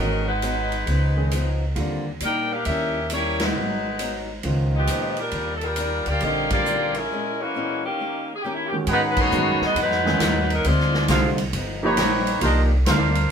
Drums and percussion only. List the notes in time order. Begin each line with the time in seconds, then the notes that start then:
0.42 hi-hat pedal, ride
0.72 ride
0.87 ride
1.31 hi-hat pedal, ride
1.76 ride
2.20 hi-hat pedal, ride
2.65 ride
3.10 hi-hat pedal, ride
3.40 snare, ride
3.99 hi-hat pedal, ride
4.43 ride
4.87 hi-hat pedal, ride
5.17 ride
5.31 ride
5.61 ride
5.76 hi-hat pedal, ride
6.06 ride
6.20 ride
6.50 kick, ride
6.66 hi-hat pedal
6.95 ride
8.87 ride
9.17 kick, crash
9.32 hi-hat pedal
9.62 snare
9.76 ride
9.91 snare
10.06 snare
10.20 snare, hi-hat pedal, ride
10.50 ride
10.64 ride
10.80 snare
10.94 snare
11.08 snare, hi-hat pedal, ride
11.38 ride
11.53 ride
11.97 snare, hi-hat pedal, ride
12.27 ride
12.41 ride
12.86 snare, hi-hat pedal, ride
13.15 ride